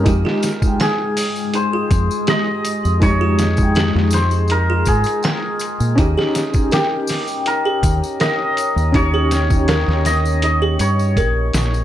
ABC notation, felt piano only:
X:1
M:4/4
L:1/16
Q:1/4=81
K:Fm
V:1 name="Felt piano"
[A,EG]3 [A,Eg]12- [A,Eg] | [A,EG]3 [A,Eg]12- [A,Eg] | [DEG]3 [DEG]12- [DEG] | [DEG]3 [DEG]12- [DEG] |]